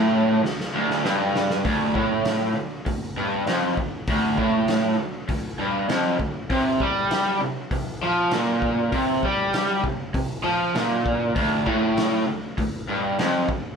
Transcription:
0.00 0.43 A2 loud
0.44 0.68 D2 medium
0.44 snare medium
0.60 snare medium
0.75 1.04 D2 loud
0.90 snare medium
1.05 1.64 G2 medium
1.05 snare loud
1.35 snare loud
1.50 snare medium
1.65 1.94 D2 loud
1.65 kick loud
1.65 open hi-hat medium
1.95 2.55 A2 medium
1.95 kick medium
2.25 snare loud
2.25 open hi-hat medium
2.56 2.80 D2 medium
2.86 3.11 D2 medium
2.86 kick loud
2.86 open hi-hat medium
3.17 3.46 G2 loud
3.47 3.77 F2 medium
3.47 snare loud
3.47 open hi-hat medium
3.77 4.02 D2 medium
3.77 kick medium
4.07 4.38 D2 loud
4.07 kick loud
4.07 open hi-hat medium
4.38 4.98 A2 loud
4.38 kick medium
4.68 snare loud
4.68 open hi-hat medium
4.99 5.23 D2 medium
5.29 5.53 D2 medium
5.29 kick loud
5.29 open hi-hat medium
5.59 5.88 G2 medium
5.89 6.18 F2 medium
5.89 snare loud
5.89 open hi-hat medium
6.19 6.44 D2 medium
6.19 kick medium
6.50 6.79 C3 loud
6.50 kick loud
6.50 open hi-hat medium
6.80 7.40 G3 loud
6.80 kick medium
7.10 snare loud
7.10 open hi-hat medium
7.41 7.65 C3 medium
7.71 7.96 C3 medium
7.71 kick loud
7.71 open hi-hat medium
8.03 8.31 F3 loud
8.31 8.92 A#2 loud
8.31 snare loud
8.31 open hi-hat medium
8.62 kick medium
8.92 9.22 C3 medium
8.92 kick loud
8.92 open hi-hat medium
9.23 9.83 G3 loud
9.23 kick medium
9.53 snare loud
9.53 open hi-hat medium
9.83 10.08 C3 medium
9.83 kick medium
10.14 10.38 C3 medium
10.14 kick loud
10.14 open hi-hat medium
10.44 10.73 F3 medium
10.74 11.34 A#2 medium
10.74 snare loud
10.74 open hi-hat medium
11.06 kick medium
11.36 11.66 D2 loud
11.36 kick loud
11.36 open hi-hat medium
11.66 12.25 A2 medium
11.66 kick medium
11.97 snare loud
11.97 open hi-hat medium
12.28 12.51 D2 medium
12.58 12.81 D2 medium
12.58 kick loud
12.58 open hi-hat medium
12.89 13.17 G2 loud
13.19 13.47 F2 medium
13.19 snare loud
13.19 open hi-hat medium
13.49 13.72 D2 medium
13.49 kick medium

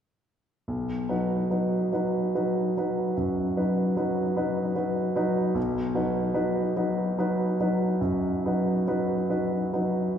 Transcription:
0.68 1.08 B1 soft
1.09 1.48 F#3 soft
1.09 1.47 D#4 soft
1.09 1.48 B4 soft
1.50 1.89 F#3 soft
1.50 1.89 D#4 soft
1.50 1.89 B4 soft
1.92 2.31 F#3 soft
1.92 2.31 D#4 soft
1.92 2.31 B4 soft
2.35 2.72 F#3 soft
2.35 2.73 D#4 soft
2.35 2.72 B4 soft
2.77 3.13 F#3 soft
2.77 3.13 D#4 soft
2.77 3.14 B4 soft
3.17 3.56 F#2 soft
3.57 3.93 F#3 soft
3.57 3.93 D#4 soft
3.57 3.93 B4 soft
3.96 4.33 F#3 soft
3.96 4.33 D#4 soft
3.96 4.33 B4 soft
4.36 4.72 F#3 soft
4.36 4.73 D#4 soft
4.36 4.73 B4 soft
4.75 5.12 F#3 soft
4.75 5.12 D#4 soft
4.75 5.12 B4 soft
5.15 5.52 F#3 soft
5.15 5.52 D#4 soft
5.15 5.52 B4 soft
5.55 5.94 B1 soft
5.94 6.32 F#3 soft
5.94 6.32 D#4 soft
5.94 6.32 B4 soft
6.34 6.72 F#3 soft
6.34 6.72 D#4 soft
6.34 6.72 B4 soft
6.76 7.14 F#3 soft
6.76 7.14 D#4 soft
6.76 7.15 B4 soft
7.18 7.56 F#3 soft
7.18 7.56 D#4 soft
7.18 7.57 B4 soft
7.60 7.99 F#3 soft
7.60 7.99 D#4 soft
7.60 7.99 B4 soft
8.01 8.43 F#2 soft
8.46 8.84 F#3 soft
8.46 8.84 D#4 soft
8.46 8.85 B4 soft
8.87 9.27 F#3 soft
8.87 9.27 D#4 soft
8.87 9.27 B4 soft
9.29 9.70 F#3 soft
9.29 9.71 D#4 soft
9.29 9.71 B4 soft
9.73 10.16 F#3 soft
9.73 10.16 D#4 soft
9.73 10.17 B4 soft

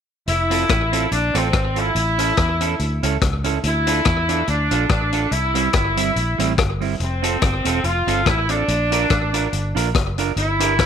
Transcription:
0.27 0.63 F1 loud
0.27 1.08 E4 medium
0.27 closed hi-hat medium
0.50 0.64 C4 medium
0.50 0.64 F4 medium
0.50 0.64 A4 medium
0.50 closed hi-hat medium
0.69 1.05 A1 medium
0.69 kick loud
0.69 cross-stick loud
0.69 closed hi-hat medium
0.92 1.05 C4 medium
0.92 1.06 F4 medium
0.92 1.06 A4 medium
0.92 closed hi-hat medium
1.11 1.31 A#1 medium
1.11 1.35 D4 medium
1.11 muted clean electric guitar stroke soft
1.11 closed hi-hat medium
1.34 1.51 A1 medium
1.34 1.47 C4 medium
1.34 1.77 C4 medium
1.34 1.48 F4 medium
1.34 1.48 A4 medium
1.34 closed hi-hat medium
1.53 1.89 G#1 loud
1.53 kick loud
1.53 cross-stick loud
1.53 closed hi-hat medium
1.75 1.89 C4 medium
1.75 3.04 E4 medium
1.75 1.90 F4 medium
1.75 1.90 A4 medium
1.75 closed hi-hat medium
1.95 2.31 A1 loud
1.95 closed hi-hat medium
2.18 2.32 C#4 medium
2.18 2.32 E4 medium
2.18 2.32 A4 medium
2.18 closed hi-hat medium
2.37 2.73 E2 medium
2.37 kick loud
2.37 cross-stick loud
2.37 closed hi-hat medium
2.61 2.74 C#4 medium
2.61 2.74 E4 medium
2.61 2.74 A4 medium
2.61 closed hi-hat medium
2.79 2.99 D2 medium
2.79 closed hi-hat medium
3.03 3.19 C#2 medium
3.03 3.16 C#4 medium
3.03 3.16 E4 medium
3.03 3.17 A4 medium
3.03 closed hi-hat medium
3.21 3.57 C#2 loud
3.21 kick loud
3.21 cross-stick medium
3.21 closed hi-hat medium
3.44 3.58 C#4 medium
3.44 3.58 E4 medium
3.44 3.59 A4 medium
3.44 closed hi-hat medium
3.63 3.99 D2 loud
3.63 4.45 E4 medium
3.63 closed hi-hat medium
3.87 4.00 D4 medium
3.87 4.00 F4 medium
3.87 4.01 A4 medium
3.87 closed hi-hat medium
4.05 4.41 E2 medium
4.05 kick loud
4.05 cross-stick loud
4.05 closed hi-hat medium
4.29 4.42 D4 medium
4.29 4.42 F4 medium
4.29 4.43 A4 medium
4.29 closed hi-hat medium
4.47 4.67 D2 loud
4.47 4.89 D4 medium
4.47 muted clean electric guitar stroke soft
4.47 closed hi-hat medium
4.71 4.87 A#1 medium
4.71 4.84 D4 medium
4.71 4.84 F4 medium
4.71 4.85 A4 medium
4.71 closed hi-hat medium
4.89 5.25 A1 loud
4.89 5.29 D4 medium
4.89 kick loud
4.89 cross-stick loud
4.89 closed hi-hat medium
5.12 5.26 D4 medium
5.12 5.26 F4 medium
5.12 5.27 A4 medium
5.12 closed hi-hat medium
5.31 5.67 C2 loud
5.31 5.73 E4 medium
5.31 closed hi-hat medium
5.54 5.68 G3 medium
5.54 5.68 C4 medium
5.54 5.68 E4 medium
5.54 closed hi-hat medium
5.73 6.10 G1 loud
5.73 6.54 E4 medium
5.73 kick loud
5.73 cross-stick loud
5.73 closed hi-hat medium
5.97 6.10 G3 medium
5.97 6.10 C4 medium
5.97 6.11 E4 medium
5.97 closed hi-hat medium
6.16 6.36 A#1 medium
6.16 closed hi-hat medium
6.38 6.55 A1 medium
6.38 6.52 G3 medium
6.38 6.52 C4 medium
6.38 6.53 E4 medium
6.38 closed hi-hat medium
6.58 6.94 G1 medium
6.58 kick loud
6.58 cross-stick loud
6.58 closed hi-hat medium
6.81 6.94 G3 medium
6.81 6.94 C4 medium
6.81 6.95 E4 medium
6.81 open hi-hat soft
7.00 7.36 F1 loud
7.00 7.81 C4 medium
7.00 closed hi-hat medium
7.22 7.36 C4 medium
7.22 7.36 F4 medium
7.22 7.37 A4 loud
7.22 closed hi-hat medium
7.42 7.62 G1 medium
7.42 kick loud
7.42 cross-stick loud
7.42 closed hi-hat medium
7.64 7.81 E1 medium
7.64 7.78 C4 medium
7.64 7.79 F4 medium
7.64 7.79 A4 medium
7.64 closed hi-hat medium
7.84 8.04 F1 medium
7.84 8.26 F4 loud
7.84 muted clean electric guitar stroke soft
7.84 closed hi-hat medium
8.07 8.23 G1 medium
8.07 8.20 C4 medium
8.07 8.21 F4 medium
8.07 8.21 A4 medium
8.07 closed hi-hat medium
8.26 8.62 A1 loud
8.26 8.50 E4 medium
8.26 muted clean electric guitar stroke soft
8.26 kick loud
8.26 cross-stick loud
8.26 closed hi-hat medium
8.49 8.62 C4 medium
8.49 9.76 D4 medium
8.49 8.63 F4 medium
8.49 8.63 A4 medium
8.49 closed hi-hat medium
8.68 9.04 A#1 loud
8.68 closed hi-hat medium
8.91 9.04 D4 medium
8.91 9.05 F4 loud
8.91 9.05 A#4 loud
8.91 closed hi-hat medium
9.10 9.46 A1 medium
9.10 kick loud
9.10 cross-stick loud
9.10 closed hi-hat medium
9.33 9.46 D4 medium
9.33 9.47 F4 medium
9.33 9.47 A#4 medium
9.33 closed hi-hat medium
9.53 9.72 G1 medium
9.53 closed hi-hat medium
9.75 9.92 A#1 loud
9.75 9.88 D4 medium
9.75 9.89 F4 medium
9.75 9.89 A#4 medium
9.75 closed hi-hat medium
9.95 10.30 F#1 medium
9.95 kick loud
9.95 cross-stick loud
9.95 closed hi-hat medium
10.18 10.31 D4 medium
10.18 10.31 F4 medium
10.18 10.32 A#4 medium
10.18 closed hi-hat medium
10.36 10.79 G1 loud
10.36 10.86 E4 medium
10.36 closed hi-hat medium
10.59 10.73 D4 medium
10.59 10.73 G4 medium
10.59 10.74 A#4 loud
10.59 closed hi-hat medium
10.79 10.86 A1 medium
10.79 kick loud
10.79 cross-stick loud
10.79 closed hi-hat medium

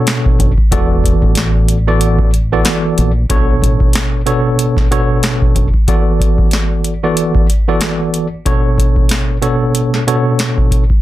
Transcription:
0.00 0.50 B2 loud
0.00 0.51 B3 medium
0.00 0.51 D4 medium
0.00 0.51 A4 medium
0.00 0.51 C#5 loud
0.07 snare loud
0.07 closed hi-hat medium
0.26 kick loud
0.39 0.54 F#1 medium
0.39 kick medium
0.39 closed hi-hat medium
0.58 kick loud
0.71 1.13 E1 loud
0.71 1.76 E3 medium
0.71 1.77 B3 medium
0.71 1.77 F#4 medium
0.71 1.77 A4 medium
0.71 1.77 D5 loud
0.71 kick loud
0.71 closed hi-hat medium
1.04 kick medium
1.04 closed hi-hat medium
1.22 2.61 A1 medium
1.22 kick medium
1.35 snare loud
1.35 snare medium
1.35 closed hi-hat loud
1.68 closed hi-hat medium
1.87 2.30 E3 medium
1.87 2.30 B3 medium
1.87 2.30 F#4 medium
1.87 2.30 A4 medium
1.87 2.30 D5 loud
2.01 closed hi-hat loud
2.19 kick loud
2.34 closed hi-hat medium
2.52 3.10 E3 loud
2.52 3.10 B3 medium
2.52 3.11 F#4 medium
2.52 3.11 A4 medium
2.52 3.11 D5 loud
2.65 snare loud
2.65 closed hi-hat medium
2.98 3.24 A#1 medium
2.98 closed hi-hat medium
3.30 3.56 B1 loud
3.30 4.20 B2 medium
3.30 4.20 B3 medium
3.30 4.20 D4 medium
3.30 4.20 A4 medium
3.30 4.20 C#5 loud
3.30 kick loud
3.30 closed hi-hat medium
3.62 3.77 A1 medium
3.62 kick medium
3.62 closed hi-hat medium
3.80 kick loud
3.93 snare loud
3.93 snare medium
3.93 closed hi-hat loud
4.26 4.86 B2 medium
4.26 4.86 B3 medium
4.26 4.86 D4 medium
4.26 4.87 A4 loud
4.26 4.87 C#5 loud
4.26 closed hi-hat medium
4.59 closed hi-hat loud
4.77 kick loud
4.77 snare soft
4.91 5.67 B2 loud
4.91 5.67 B3 medium
4.91 5.67 D4 medium
4.91 5.67 A4 medium
4.91 5.67 C#5 loud
4.91 closed hi-hat medium
5.23 snare loud
5.23 snare medium
5.23 closed hi-hat medium
5.42 kick loud
5.55 5.70 F#1 medium
5.55 kick medium
5.55 closed hi-hat medium
5.74 kick loud
5.88 6.93 E3 medium
5.88 6.93 B3 medium
5.88 6.93 F#4 medium
5.88 6.93 A4 medium
5.88 6.93 D5 medium
5.88 kick loud
5.88 closed hi-hat medium
6.20 kick medium
6.20 closed hi-hat medium
6.38 kick medium
6.51 snare loud
6.51 snare medium
6.51 closed hi-hat loud
6.84 closed hi-hat medium
7.03 7.46 E3 medium
7.03 7.46 B3 medium
7.03 7.46 F#4 medium
7.03 7.46 A4 medium
7.03 7.46 D5 loud
7.17 closed hi-hat medium
7.35 kick loud
7.50 closed hi-hat medium
7.68 8.26 E3 medium
7.68 8.26 B3 medium
7.68 8.27 F#4 medium
7.68 8.27 A4 medium
7.68 8.27 D5 loud
7.81 snare loud
7.81 snare medium
7.81 closed hi-hat medium
8.14 closed hi-hat medium
8.45 9.36 B2 medium
8.45 9.36 B3 medium
8.45 9.36 D4 medium
8.45 9.36 A4 medium
8.45 9.36 C#5 loud
8.45 kick loud
8.45 closed hi-hat medium
8.78 kick medium
8.78 closed hi-hat medium
8.96 kick medium
9.09 snare loud
9.09 snare medium
9.09 closed hi-hat loud
9.42 10.02 B2 medium
9.42 10.02 B3 medium
9.42 10.02 D4 medium
9.42 10.02 A4 medium
9.42 10.03 C#5 medium
9.42 closed hi-hat medium
9.75 closed hi-hat loud
9.94 snare soft
10.07 10.83 B2 loud
10.07 10.83 B3 medium
10.07 10.83 D4 medium
10.07 10.83 A4 medium
10.07 10.83 C#5 loud
10.07 closed hi-hat medium
10.39 snare loud
10.39 snare medium
10.39 closed hi-hat medium
10.58 kick medium
10.71 kick medium
10.71 closed hi-hat medium
10.90 kick loud

